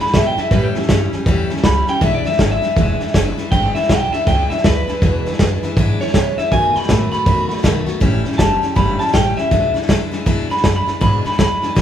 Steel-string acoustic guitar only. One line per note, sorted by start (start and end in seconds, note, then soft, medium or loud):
0.00 0.12 E3 soft
0.00 0.13 G#3 medium
0.00 0.14 D4 soft
0.00 0.14 E4 medium
0.13 0.37 E3 medium
0.13 0.37 G#3 medium
0.13 0.37 D4 medium
0.13 0.36 E4 medium
0.37 0.51 E3 soft
0.37 0.52 G#3 medium
0.37 0.52 D4 medium
0.37 0.51 E4 medium
0.51 0.75 A2 medium
0.51 0.75 E3 medium
0.51 0.75 G3 medium
0.51 0.75 C#4 medium
0.51 0.74 E4 medium
0.75 0.89 G3 soft
0.75 0.89 C#4 soft
0.75 0.89 E4 medium
0.89 1.12 E3 medium
0.89 1.13 G3 medium
0.89 1.13 C#4 medium
0.89 1.11 E4 medium
1.13 1.27 G3 soft
1.13 1.27 C#4 medium
1.13 1.27 E4 medium
1.27 1.50 A2 medium
1.27 1.51 E3 medium
1.27 1.51 G3 medium
1.27 1.50 C#4 medium
1.27 1.49 E4 loud
1.50 1.64 G3 soft
1.50 1.65 C#4 medium
1.50 1.64 E4 medium
1.64 1.88 E3 medium
1.64 1.88 G3 medium
1.64 1.87 C#4 medium
1.64 1.86 E4 medium
1.87 2.02 G3 soft
1.87 2.02 C#4 medium
1.87 2.02 E4 medium
2.01 2.25 E2 medium
2.01 2.25 B2 medium
2.01 2.25 E3 medium
2.01 2.25 G#3 medium
2.01 2.24 D4 medium
2.01 2.23 E4 medium
2.24 2.37 E3 soft
2.24 2.38 G#3 soft
2.24 2.39 D4 medium
2.24 2.39 E4 medium
2.38 2.62 E3 medium
2.38 2.63 G#3 medium
2.38 2.62 D4 medium
2.38 2.61 E4 medium
2.62 2.76 E3 medium
2.62 2.77 G#3 medium
2.62 2.77 D4 medium
2.62 2.76 E4 medium
2.77 3.00 E2 medium
2.77 3.01 B2 medium
2.77 3.01 E3 medium
2.77 3.01 G#3 medium
2.77 3.00 D4 medium
2.77 2.99 E4 medium
3.00 3.13 E3 soft
3.00 3.14 G#3 soft
3.00 3.15 D4 medium
3.00 3.14 E4 medium
3.15 3.38 E3 medium
3.15 3.38 G#3 medium
3.15 3.37 D4 medium
3.15 3.36 E4 medium
3.38 3.51 E3 medium
3.38 3.52 G#3 medium
3.38 3.52 D4 medium
3.38 3.52 E4 medium
3.52 3.75 E2 medium
3.52 3.76 B2 medium
3.52 3.76 E3 medium
3.52 3.76 G#3 medium
3.52 3.75 D4 medium
3.52 3.74 E4 medium
3.75 3.88 E3 soft
3.75 3.89 G#3 soft
3.75 3.90 D4 medium
3.75 3.89 E4 medium
3.89 4.13 E3 medium
3.89 4.13 G#3 medium
3.89 4.13 D4 medium
3.89 4.11 E4 medium
4.13 4.26 E3 medium
4.13 4.27 G#3 medium
4.13 4.27 D4 medium
4.13 4.27 E4 medium
4.27 4.50 E2 medium
4.27 4.51 B2 medium
4.27 4.51 E3 medium
4.27 4.51 G#3 medium
4.27 4.50 D4 medium
4.27 4.49 E4 medium
4.50 4.63 E3 soft
4.50 4.64 G#3 soft
4.50 4.65 D4 medium
4.50 4.64 E4 medium
4.64 4.88 E3 medium
4.64 4.88 G#3 medium
4.64 4.87 D4 medium
4.64 4.86 E4 medium
4.88 5.02 E3 soft
4.88 5.02 G#3 medium
4.88 5.02 D4 soft
4.88 5.02 E4 medium
5.02 5.25 E2 medium
5.02 5.26 B2 medium
5.02 5.26 E3 medium
5.02 5.26 G#3 medium
5.02 5.25 D4 medium
5.02 5.24 E4 medium
5.26 5.38 E3 medium
5.26 5.40 G#3 medium
5.26 5.40 D4 medium
5.26 5.40 E4 medium
5.40 5.63 E3 medium
5.40 5.64 G#3 medium
5.40 5.63 D4 medium
5.40 5.62 E4 medium
5.63 5.77 E3 medium
5.63 5.77 G#3 medium
5.63 5.78 D4 medium
5.63 5.77 E4 medium
5.77 6.01 E2 medium
5.77 6.01 B2 medium
5.77 6.01 E3 medium
5.77 6.01 G#3 loud
5.77 6.00 D4 medium
5.77 5.99 E4 medium
6.00 6.13 E3 soft
6.00 6.14 G#3 medium
6.00 6.15 D4 medium
6.00 6.14 E4 medium
6.14 6.38 E3 medium
6.14 6.38 G#3 medium
6.14 6.38 D4 medium
6.14 6.37 E4 medium
6.38 6.52 E3 soft
6.38 6.52 G#3 medium
6.38 6.52 D4 medium
6.38 6.52 E4 medium
6.52 6.75 B2 medium
6.52 6.76 D#3 medium
6.52 6.76 A3 medium
6.52 6.75 B3 medium
6.52 6.73 F#4 medium
6.74 6.88 A3 soft
6.74 6.89 B3 soft
6.74 6.89 F#4 medium
6.88 7.12 D#3 medium
6.88 7.13 A3 medium
6.88 7.12 B3 medium
6.88 7.10 F#4 medium
7.12 7.26 A3 soft
7.12 7.27 B3 medium
7.12 7.26 F#4 medium
7.26 7.50 B2 medium
7.26 7.50 D#3 medium
7.26 7.50 A3 loud
7.26 7.49 B3 medium
7.26 7.47 F#4 medium
7.49 7.62 A3 soft
7.49 7.63 B3 soft
7.49 7.63 F#4 medium
7.63 7.87 D#3 medium
7.63 7.87 A3 medium
7.63 7.87 B3 medium
7.63 7.85 F#4 medium
7.86 8.01 A3 soft
7.86 8.01 B3 medium
7.86 8.01 F#4 medium
8.00 8.25 A2 medium
8.00 8.25 E3 medium
8.00 8.25 G3 medium
8.00 8.24 C#4 loud
8.00 8.23 E4 loud
8.24 8.38 G3 soft
8.24 8.39 C#4 medium
8.24 8.39 E4 medium
8.38 8.62 E3 medium
8.38 8.63 G3 medium
8.38 8.62 C#4 medium
8.38 8.60 E4 medium
8.62 8.76 G3 soft
8.62 8.76 C#4 medium
8.62 8.76 E4 medium
8.76 9.00 A2 medium
8.76 9.00 E3 medium
8.76 9.00 G3 medium
8.76 8.99 C#4 medium
8.76 8.98 E4 medium
8.99 9.12 G3 soft
8.99 9.13 C#4 medium
8.99 9.14 E4 medium
9.13 9.37 E3 medium
9.13 9.37 G3 medium
9.13 9.37 C#4 medium
9.13 9.35 E4 medium
9.37 9.52 G3 soft
9.37 9.52 C#4 medium
9.37 9.51 E4 medium
9.51 9.75 E2 medium
9.51 9.75 B2 medium
9.51 9.75 E3 medium
9.51 9.75 G#3 medium
9.51 9.74 D4 medium
9.51 9.73 E4 medium
9.74 9.87 E3 soft
9.74 9.88 G#3 soft
9.74 9.89 D4 medium
9.74 9.89 E4 medium
9.88 10.12 E3 medium
9.88 10.12 G#3 medium
9.88 10.11 D4 medium
9.88 10.10 E4 medium
10.12 10.26 E3 medium
10.12 10.26 G#3 medium
10.12 10.26 D4 medium
10.12 10.26 E4 medium
10.26 10.50 E2 medium
10.26 10.50 B2 medium
10.26 10.50 E3 medium
10.26 10.50 G#3 loud
10.26 10.49 D4 loud
10.26 10.48 E4 loud
10.49 10.62 E3 soft
10.49 10.63 G#3 medium
10.49 10.64 D4 medium
10.49 10.64 E4 medium
10.63 10.87 E3 medium
10.63 10.87 G#3 medium
10.63 10.86 D4 medium
10.63 10.85 E4 medium
10.86 11.00 E3 medium
10.86 11.00 G#3 soft
10.86 11.01 D4 medium
10.86 11.01 E4 medium
11.01 11.25 E2 medium
11.01 11.25 B2 medium
11.01 11.25 E3 medium
11.01 11.25 G#3 medium
11.01 11.24 D4 medium
11.01 11.23 E4 medium
11.25 11.37 E3 soft
11.25 11.38 G#3 soft
11.25 11.39 D4 medium
11.25 11.39 E4 medium
11.38 11.62 E3 medium
11.38 11.63 G#3 medium
11.38 11.62 D4 medium
11.38 11.61 E4 medium
11.62 11.76 E3 medium
11.62 11.76 G#3 medium
11.62 11.76 D4 medium
11.62 11.76 E4 medium
11.76 11.82 E2 medium
11.76 11.82 B2 medium
11.76 11.82 E3 medium
11.76 11.82 G#3 medium
11.76 11.82 D4 medium
11.76 11.82 E4 medium